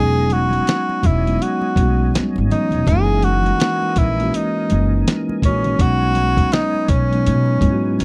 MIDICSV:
0, 0, Header, 1, 6, 480
1, 0, Start_track
1, 0, Key_signature, 5, "major"
1, 0, Tempo, 731707
1, 1880, Time_signature, 4, 2, 24, 8
1, 5278, End_track
2, 0, Start_track
2, 0, Title_t, "Tonewheel organ"
2, 0, Program_c, 0, 16
2, 0, Note_on_c, 0, 66, 59
2, 0, Note_on_c, 0, 73, 52
2, 0, Note_on_c, 0, 75, 54
2, 0, Note_on_c, 0, 80, 69
2, 1862, Note_off_c, 0, 73, 0
2, 1863, Note_off_c, 0, 66, 0
2, 1890, Note_on_c, 0, 52, 62
2, 1892, Note_on_c, 0, 70, 55
2, 3779, Note_off_c, 0, 75, 0
2, 3786, Note_off_c, 0, 52, 0
2, 3787, Note_off_c, 0, 70, 0
2, 3800, Note_on_c, 0, 71, 54
2, 3801, Note_on_c, 0, 63, 62
2, 3803, Note_on_c, 0, 73, 51
2, 5278, Note_off_c, 0, 63, 0
2, 5278, Note_off_c, 0, 71, 0
2, 5278, Note_off_c, 0, 73, 0
2, 5278, Note_off_c, 0, 80, 0
2, 5278, End_track
3, 0, Start_track
3, 0, Title_t, "Tenor saxophone"
3, 0, Program_c, 1, 66
3, 0, Note_on_c, 1, 68, 112
3, 215, Note_on_c, 1, 66, 97
3, 225, Note_off_c, 1, 68, 0
3, 697, Note_on_c, 1, 64, 83
3, 707, Note_off_c, 1, 66, 0
3, 932, Note_on_c, 1, 66, 78
3, 942, Note_off_c, 1, 64, 0
3, 1406, Note_off_c, 1, 66, 0
3, 1649, Note_on_c, 1, 63, 93
3, 1890, Note_on_c, 1, 68, 112
3, 1900, Note_off_c, 1, 63, 0
3, 2127, Note_on_c, 1, 66, 95
3, 2137, Note_off_c, 1, 68, 0
3, 2612, Note_on_c, 1, 64, 85
3, 2622, Note_off_c, 1, 66, 0
3, 2856, Note_on_c, 1, 63, 73
3, 2865, Note_off_c, 1, 64, 0
3, 3328, Note_off_c, 1, 63, 0
3, 3576, Note_on_c, 1, 61, 96
3, 3813, Note_on_c, 1, 66, 120
3, 3823, Note_off_c, 1, 61, 0
3, 4282, Note_on_c, 1, 63, 101
3, 4292, Note_off_c, 1, 66, 0
3, 4522, Note_on_c, 1, 61, 83
3, 4532, Note_off_c, 1, 63, 0
3, 5278, Note_off_c, 1, 61, 0
3, 5278, End_track
4, 0, Start_track
4, 0, Title_t, "Tine electric piano"
4, 0, Program_c, 2, 4
4, 0, Note_on_c, 2, 54, 84
4, 0, Note_on_c, 2, 56, 75
4, 0, Note_on_c, 2, 59, 71
4, 0, Note_on_c, 2, 61, 71
4, 0, Note_on_c, 2, 63, 99
4, 97, Control_c, 2, 64, 127
4, 662, Note_off_c, 2, 54, 0
4, 666, Note_off_c, 2, 56, 0
4, 669, Note_off_c, 2, 59, 0
4, 672, Note_off_c, 2, 61, 0
4, 676, Note_off_c, 2, 63, 0
4, 828, Note_on_c, 2, 54, 56
4, 832, Note_on_c, 2, 56, 53
4, 838, Note_on_c, 2, 59, 54
4, 846, Note_on_c, 2, 61, 50
4, 851, Note_on_c, 2, 63, 64
4, 1113, Note_off_c, 2, 54, 0
4, 1115, Note_off_c, 2, 56, 0
4, 1118, Note_off_c, 2, 59, 0
4, 1122, Note_off_c, 2, 61, 0
4, 1125, Note_off_c, 2, 63, 0
4, 1159, Note_on_c, 2, 54, 71
4, 1166, Note_on_c, 2, 55, 56
4, 1171, Note_on_c, 2, 59, 64
4, 1178, Note_on_c, 2, 61, 60
4, 1186, Note_on_c, 2, 66, 80
4, 1208, Note_on_c, 2, 56, 71
4, 1215, Note_off_c, 2, 55, 0
4, 1575, Note_off_c, 2, 54, 0
4, 1581, Note_off_c, 2, 59, 0
4, 1585, Note_off_c, 2, 61, 0
4, 1589, Note_off_c, 2, 66, 0
4, 1600, Note_off_c, 2, 56, 0
4, 1644, Note_on_c, 2, 54, 65
4, 1650, Note_on_c, 2, 56, 59
4, 1657, Note_on_c, 2, 59, 54
4, 1663, Note_on_c, 2, 61, 61
4, 1671, Note_on_c, 2, 52, 73
4, 1850, Note_off_c, 2, 54, 0
4, 1853, Note_off_c, 2, 56, 0
4, 1857, Note_off_c, 2, 59, 0
4, 1860, Note_off_c, 2, 61, 0
4, 1863, Note_off_c, 2, 52, 0
4, 1880, Note_on_c, 2, 52, 96
4, 1887, Note_on_c, 2, 56, 81
4, 1889, Control_c, 2, 64, 0
4, 1889, Note_on_c, 2, 57, 64
4, 1898, Note_on_c, 2, 61, 77
4, 1904, Note_on_c, 2, 63, 102
4, 1935, Note_on_c, 2, 58, 79
4, 1936, Note_off_c, 2, 57, 0
4, 2018, Control_c, 2, 64, 127
4, 2582, Note_off_c, 2, 52, 0
4, 2586, Note_off_c, 2, 56, 0
4, 2591, Note_off_c, 2, 61, 0
4, 2594, Note_off_c, 2, 63, 0
4, 2610, Note_off_c, 2, 58, 0
4, 2745, Note_on_c, 2, 52, 60
4, 2751, Note_on_c, 2, 56, 55
4, 2757, Note_on_c, 2, 58, 54
4, 2763, Note_on_c, 2, 61, 55
4, 2771, Note_on_c, 2, 66, 67
4, 3032, Note_off_c, 2, 52, 0
4, 3035, Note_off_c, 2, 56, 0
4, 3038, Note_off_c, 2, 58, 0
4, 3041, Note_off_c, 2, 61, 0
4, 3045, Note_off_c, 2, 66, 0
4, 3082, Note_on_c, 2, 52, 68
4, 3088, Note_on_c, 2, 56, 64
4, 3096, Note_on_c, 2, 58, 70
4, 3103, Note_on_c, 2, 61, 68
4, 3109, Note_on_c, 2, 63, 77
4, 3497, Note_off_c, 2, 52, 0
4, 3500, Note_off_c, 2, 56, 0
4, 3504, Note_off_c, 2, 58, 0
4, 3507, Note_off_c, 2, 61, 0
4, 3510, Note_off_c, 2, 63, 0
4, 3558, Note_on_c, 2, 52, 71
4, 3565, Note_on_c, 2, 56, 61
4, 3573, Note_on_c, 2, 58, 62
4, 3580, Note_on_c, 2, 61, 65
4, 3587, Note_on_c, 2, 66, 76
4, 3767, Note_off_c, 2, 52, 0
4, 3771, Note_off_c, 2, 56, 0
4, 3775, Note_off_c, 2, 58, 0
4, 3778, Note_off_c, 2, 61, 0
4, 3782, Note_off_c, 2, 66, 0
4, 3797, Note_on_c, 2, 54, 87
4, 3802, Note_on_c, 2, 56, 78
4, 3808, Control_c, 2, 64, 0
4, 3808, Note_on_c, 2, 59, 78
4, 3814, Note_on_c, 2, 61, 84
4, 3823, Note_on_c, 2, 63, 103
4, 3941, Control_c, 2, 64, 127
4, 4501, Note_off_c, 2, 54, 0
4, 4503, Note_off_c, 2, 56, 0
4, 4506, Note_off_c, 2, 59, 0
4, 4510, Note_off_c, 2, 61, 0
4, 4514, Note_off_c, 2, 63, 0
4, 4664, Note_on_c, 2, 54, 59
4, 4671, Note_on_c, 2, 56, 52
4, 4677, Note_on_c, 2, 59, 53
4, 4683, Note_on_c, 2, 61, 53
4, 4690, Note_on_c, 2, 63, 65
4, 4951, Note_off_c, 2, 54, 0
4, 4955, Note_off_c, 2, 56, 0
4, 4958, Note_off_c, 2, 59, 0
4, 4961, Note_off_c, 2, 61, 0
4, 4964, Note_off_c, 2, 63, 0
4, 5001, Note_on_c, 2, 54, 74
4, 5005, Note_on_c, 2, 56, 68
4, 5010, Note_on_c, 2, 59, 66
4, 5019, Note_on_c, 2, 61, 64
4, 5023, Note_on_c, 2, 64, 65
4, 5063, Note_off_c, 2, 64, 0
4, 5069, Note_on_c, 2, 66, 82
4, 5278, Note_off_c, 2, 54, 0
4, 5278, Note_off_c, 2, 56, 0
4, 5278, Note_off_c, 2, 59, 0
4, 5278, Note_off_c, 2, 61, 0
4, 5278, Note_off_c, 2, 66, 0
4, 5278, End_track
5, 0, Start_track
5, 0, Title_t, "Upright bass"
5, 0, Program_c, 3, 32
5, 0, Note_on_c, 3, 28, 100
5, 377, Note_off_c, 3, 28, 0
5, 689, Note_on_c, 3, 28, 92
5, 892, Note_off_c, 3, 28, 0
5, 1161, Note_on_c, 3, 35, 91
5, 1368, Note_off_c, 3, 35, 0
5, 1561, Note_on_c, 3, 32, 87
5, 1636, Note_off_c, 3, 32, 0
5, 1799, Note_on_c, 3, 28, 82
5, 1875, Note_off_c, 3, 28, 0
5, 1887, Note_on_c, 3, 30, 101
5, 2298, Note_off_c, 3, 30, 0
5, 2608, Note_on_c, 3, 34, 90
5, 2812, Note_off_c, 3, 34, 0
5, 3095, Note_on_c, 3, 30, 88
5, 3295, Note_off_c, 3, 30, 0
5, 3564, Note_on_c, 3, 34, 94
5, 3769, Note_off_c, 3, 34, 0
5, 3806, Note_on_c, 3, 35, 92
5, 4217, Note_off_c, 3, 35, 0
5, 4525, Note_on_c, 3, 35, 79
5, 4770, Note_on_c, 3, 47, 96
5, 4780, Note_off_c, 3, 35, 0
5, 4973, Note_off_c, 3, 47, 0
5, 5000, Note_on_c, 3, 44, 83
5, 5207, Note_off_c, 3, 44, 0
5, 5252, Note_on_c, 3, 37, 81
5, 5278, Note_off_c, 3, 37, 0
5, 5278, End_track
6, 0, Start_track
6, 0, Title_t, "Drums"
6, 196, Note_on_c, 9, 63, 65
6, 197, Note_on_c, 9, 42, 59
6, 262, Note_off_c, 9, 42, 0
6, 262, Note_off_c, 9, 63, 0
6, 334, Note_on_c, 9, 63, 54
6, 347, Note_on_c, 9, 42, 33
6, 399, Note_off_c, 9, 63, 0
6, 412, Note_off_c, 9, 42, 0
6, 432, Note_on_c, 9, 62, 29
6, 442, Note_on_c, 9, 42, 74
6, 451, Note_on_c, 9, 38, 107
6, 498, Note_off_c, 9, 62, 0
6, 507, Note_off_c, 9, 42, 0
6, 517, Note_off_c, 9, 38, 0
6, 586, Note_on_c, 9, 62, 31
6, 651, Note_off_c, 9, 62, 0
6, 675, Note_on_c, 9, 63, 64
6, 675, Note_on_c, 9, 64, 67
6, 679, Note_on_c, 9, 42, 69
6, 682, Note_on_c, 9, 36, 85
6, 741, Note_off_c, 9, 63, 0
6, 741, Note_off_c, 9, 64, 0
6, 744, Note_off_c, 9, 42, 0
6, 748, Note_off_c, 9, 36, 0
6, 835, Note_on_c, 9, 42, 33
6, 901, Note_off_c, 9, 42, 0
6, 914, Note_on_c, 9, 62, 30
6, 930, Note_on_c, 9, 42, 79
6, 979, Note_off_c, 9, 62, 0
6, 996, Note_off_c, 9, 42, 0
6, 1060, Note_on_c, 9, 62, 30
6, 1125, Note_off_c, 9, 62, 0
6, 1155, Note_on_c, 9, 36, 90
6, 1162, Note_on_c, 9, 42, 61
6, 1163, Note_on_c, 9, 63, 65
6, 1220, Note_off_c, 9, 36, 0
6, 1228, Note_off_c, 9, 42, 0
6, 1228, Note_off_c, 9, 63, 0
6, 1404, Note_on_c, 9, 62, 26
6, 1404, Note_on_c, 9, 63, 41
6, 1412, Note_on_c, 9, 42, 82
6, 1413, Note_on_c, 9, 38, 106
6, 1470, Note_off_c, 9, 62, 0
6, 1470, Note_off_c, 9, 63, 0
6, 1478, Note_off_c, 9, 42, 0
6, 1479, Note_off_c, 9, 38, 0
6, 1547, Note_on_c, 9, 63, 68
6, 1612, Note_off_c, 9, 63, 0
6, 1642, Note_on_c, 9, 64, 59
6, 1650, Note_on_c, 9, 42, 70
6, 1708, Note_off_c, 9, 64, 0
6, 1715, Note_off_c, 9, 42, 0
6, 1777, Note_on_c, 9, 64, 54
6, 1784, Note_on_c, 9, 42, 31
6, 1843, Note_off_c, 9, 64, 0
6, 1849, Note_off_c, 9, 42, 0
6, 1875, Note_on_c, 9, 62, 33
6, 1881, Note_on_c, 9, 36, 100
6, 1886, Note_on_c, 9, 42, 79
6, 1941, Note_off_c, 9, 62, 0
6, 1947, Note_off_c, 9, 36, 0
6, 1951, Note_off_c, 9, 42, 0
6, 2115, Note_on_c, 9, 63, 64
6, 2116, Note_on_c, 9, 42, 61
6, 2181, Note_off_c, 9, 42, 0
6, 2181, Note_off_c, 9, 63, 0
6, 2251, Note_on_c, 9, 63, 59
6, 2270, Note_on_c, 9, 42, 32
6, 2316, Note_off_c, 9, 63, 0
6, 2335, Note_off_c, 9, 42, 0
6, 2354, Note_on_c, 9, 62, 25
6, 2362, Note_on_c, 9, 42, 78
6, 2371, Note_on_c, 9, 38, 116
6, 2419, Note_off_c, 9, 62, 0
6, 2427, Note_off_c, 9, 42, 0
6, 2437, Note_off_c, 9, 38, 0
6, 2507, Note_on_c, 9, 62, 31
6, 2572, Note_off_c, 9, 62, 0
6, 2597, Note_on_c, 9, 42, 76
6, 2599, Note_on_c, 9, 63, 70
6, 2599, Note_on_c, 9, 64, 72
6, 2602, Note_on_c, 9, 36, 77
6, 2663, Note_off_c, 9, 42, 0
6, 2665, Note_off_c, 9, 63, 0
6, 2665, Note_off_c, 9, 64, 0
6, 2668, Note_off_c, 9, 36, 0
6, 2754, Note_on_c, 9, 42, 33
6, 2820, Note_off_c, 9, 42, 0
6, 2836, Note_on_c, 9, 62, 30
6, 2848, Note_on_c, 9, 42, 82
6, 2902, Note_off_c, 9, 62, 0
6, 2913, Note_off_c, 9, 42, 0
6, 3082, Note_on_c, 9, 42, 68
6, 3089, Note_on_c, 9, 63, 67
6, 3147, Note_off_c, 9, 42, 0
6, 3155, Note_off_c, 9, 63, 0
6, 3327, Note_on_c, 9, 62, 27
6, 3327, Note_on_c, 9, 63, 42
6, 3329, Note_on_c, 9, 42, 86
6, 3331, Note_on_c, 9, 38, 105
6, 3392, Note_off_c, 9, 62, 0
6, 3392, Note_off_c, 9, 63, 0
6, 3395, Note_off_c, 9, 42, 0
6, 3397, Note_off_c, 9, 38, 0
6, 3472, Note_on_c, 9, 63, 68
6, 3538, Note_off_c, 9, 63, 0
6, 3558, Note_on_c, 9, 36, 84
6, 3565, Note_on_c, 9, 42, 72
6, 3565, Note_on_c, 9, 64, 61
6, 3623, Note_off_c, 9, 36, 0
6, 3630, Note_off_c, 9, 42, 0
6, 3631, Note_off_c, 9, 64, 0
6, 3702, Note_on_c, 9, 42, 32
6, 3705, Note_on_c, 9, 64, 51
6, 3768, Note_off_c, 9, 42, 0
6, 3771, Note_off_c, 9, 64, 0
6, 3799, Note_on_c, 9, 36, 111
6, 3801, Note_on_c, 9, 42, 81
6, 3864, Note_off_c, 9, 36, 0
6, 3867, Note_off_c, 9, 42, 0
6, 3951, Note_on_c, 9, 62, 35
6, 4016, Note_off_c, 9, 62, 0
6, 4035, Note_on_c, 9, 42, 61
6, 4045, Note_on_c, 9, 63, 59
6, 4100, Note_off_c, 9, 42, 0
6, 4110, Note_off_c, 9, 63, 0
6, 4178, Note_on_c, 9, 63, 59
6, 4179, Note_on_c, 9, 36, 81
6, 4183, Note_on_c, 9, 42, 34
6, 4243, Note_off_c, 9, 63, 0
6, 4244, Note_off_c, 9, 36, 0
6, 4249, Note_off_c, 9, 42, 0
6, 4277, Note_on_c, 9, 42, 72
6, 4287, Note_on_c, 9, 38, 115
6, 4343, Note_off_c, 9, 42, 0
6, 4352, Note_off_c, 9, 38, 0
6, 4426, Note_on_c, 9, 62, 30
6, 4491, Note_off_c, 9, 62, 0
6, 4516, Note_on_c, 9, 42, 76
6, 4516, Note_on_c, 9, 63, 69
6, 4516, Note_on_c, 9, 64, 71
6, 4520, Note_on_c, 9, 36, 85
6, 4582, Note_off_c, 9, 42, 0
6, 4582, Note_off_c, 9, 63, 0
6, 4582, Note_off_c, 9, 64, 0
6, 4585, Note_off_c, 9, 36, 0
6, 4675, Note_on_c, 9, 42, 32
6, 4740, Note_off_c, 9, 42, 0
6, 4751, Note_on_c, 9, 62, 32
6, 4766, Note_on_c, 9, 42, 81
6, 4817, Note_off_c, 9, 62, 0
6, 4831, Note_off_c, 9, 42, 0
6, 4892, Note_on_c, 9, 62, 28
6, 4958, Note_off_c, 9, 62, 0
6, 4992, Note_on_c, 9, 36, 86
6, 4997, Note_on_c, 9, 42, 66
6, 5004, Note_on_c, 9, 63, 66
6, 5058, Note_off_c, 9, 36, 0
6, 5063, Note_off_c, 9, 42, 0
6, 5070, Note_off_c, 9, 63, 0
6, 5241, Note_on_c, 9, 62, 30
6, 5241, Note_on_c, 9, 63, 42
6, 5248, Note_on_c, 9, 38, 52
6, 5249, Note_on_c, 9, 42, 85
6, 5278, Note_off_c, 9, 38, 0
6, 5278, Note_off_c, 9, 42, 0
6, 5278, Note_off_c, 9, 62, 0
6, 5278, Note_off_c, 9, 63, 0
6, 5278, End_track
0, 0, End_of_file